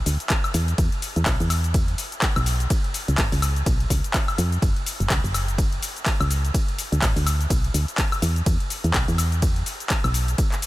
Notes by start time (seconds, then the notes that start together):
0.06 D2, open hi-hat, shaker
0.20 closed hi-hat, shaker
0.30 kick, clap, closed hi-hat, ride, shaker
0.44 closed hi-hat, high woodblock, shaker
0.54 E2, open hi-hat, shaker
0.68 closed hi-hat, shaker
0.78 E2, kick, closed hi-hat, ride, shaker
0.92 closed hi-hat
1.02 open hi-hat, shaker
1.16 E2, closed hi-hat, shaker
1.26 B1, kick, clap, closed hi-hat, ride, shaker
1.40 E2, closed hi-hat, shaker
1.50 open hi-hat, high woodblock, shaker
1.64 closed hi-hat, shaker
1.74 kick, closed hi-hat, ride, shaker
1.88 closed hi-hat
1.98 open hi-hat, shaker
2.12 closed hi-hat, shaker
2.22 kick, clap, closed hi-hat, ride, shaker
2.36 B1, closed hi-hat, high woodblock, shaker
2.46 open hi-hat, shaker
2.60 closed hi-hat, shaker
2.70 kick, closed hi-hat, ride, shaker
2.84 closed hi-hat
2.94 open hi-hat, shaker
3.08 C#2, closed hi-hat, shaker
3.18 G#1, kick, clap, closed hi-hat, ride, shaker
3.32 C#2, open hi-hat, shaker
3.42 open hi-hat, high woodblock, shaker
3.56 closed hi-hat, shaker
3.66 B1, kick, closed hi-hat, ride, shaker
3.80 closed hi-hat
3.90 C#2, kick, open hi-hat, shaker
4.04 closed hi-hat, shaker
4.14 kick, clap, closed hi-hat, ride, shaker
4.28 closed hi-hat, high woodblock, shaker
4.38 F2, open hi-hat, shaker
4.52 closed hi-hat, shaker
4.62 F#1, kick, closed hi-hat, ride, shaker
4.76 closed hi-hat
4.86 open hi-hat, shaker
5.00 F#1, closed hi-hat, shaker
5.10 C#2, kick, clap, closed hi-hat, ride, shaker
5.24 F#1, closed hi-hat, shaker
5.34 open hi-hat, high woodblock, shaker
5.48 closed hi-hat, shaker
5.58 kick, closed hi-hat, ride, shaker
5.72 closed hi-hat
5.82 open hi-hat, shaker
5.96 closed hi-hat, shaker
6.06 kick, clap, closed hi-hat, ride, shaker
6.20 C#2, closed hi-hat, high woodblock, shaker
6.31 open hi-hat, shaker
6.45 closed hi-hat, shaker
6.54 kick, closed hi-hat, ride, shaker
6.68 closed hi-hat
6.78 open hi-hat, shaker
6.92 D2, closed hi-hat, shaker
7.02 A1, kick, clap, closed hi-hat, ride, shaker
7.16 D2, open hi-hat, shaker
7.27 open hi-hat, high woodblock, shaker
7.41 closed hi-hat, shaker
7.50 B1, kick, closed hi-hat, ride, shaker
7.64 closed hi-hat
7.74 D2, open hi-hat, shaker
7.88 closed hi-hat, shaker
7.98 kick, clap, closed hi-hat, ride, shaker
8.12 closed hi-hat, high woodblock, shaker
8.22 E2, open hi-hat, shaker
8.36 closed hi-hat, shaker
8.46 E2, kick, closed hi-hat, ride, shaker
8.60 closed hi-hat
8.70 open hi-hat, shaker
8.84 E2, closed hi-hat, shaker
8.94 B1, kick, clap, closed hi-hat, ride, shaker
9.08 E2, closed hi-hat, shaker
9.18 open hi-hat, high woodblock, shaker
9.32 closed hi-hat, shaker
9.42 kick, closed hi-hat, ride, shaker
9.56 closed hi-hat
9.66 open hi-hat, shaker
9.80 closed hi-hat, shaker
9.90 kick, clap, closed hi-hat, ride, shaker
10.04 B1, closed hi-hat, high woodblock, shaker
10.14 open hi-hat, shaker
10.28 closed hi-hat, shaker
10.38 kick, closed hi-hat, ride, shaker
10.52 clap, closed hi-hat, shaker
10.62 open hi-hat, shaker